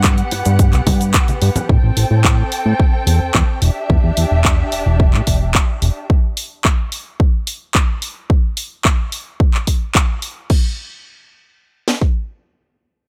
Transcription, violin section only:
0.00 1.67 B3 medium
0.00 1.67 G4 medium
0.00 1.65 F#5 medium
1.70 3.60 C4 medium
1.70 3.60 A4 medium
1.70 3.60 G5 medium
3.62 6.07 D4 medium
3.62 6.07 G4 medium
3.62 6.07 E5 medium

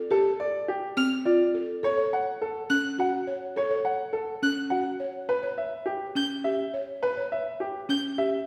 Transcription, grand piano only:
0.11 0.29 A4 medium
0.40 0.58 D5 medium
0.68 0.87 G4 medium
1.25 1.44 D5 medium
1.84 2.02 C#5 medium
2.13 2.31 F#5 medium
2.42 2.60 A4 medium
3.00 3.18 F#5 medium
3.57 3.76 C#5 medium
3.85 4.04 F#5 medium
4.13 4.33 A4 medium
4.70 4.90 F#5 medium
5.29 5.48 B4 medium
5.58 5.77 E5 soft
5.86 6.05 G4 soft
6.44 6.63 E5 medium
7.03 7.21 B4 medium
7.32 7.50 E5 medium
7.60 7.79 G4 soft
8.18 8.37 E5 medium

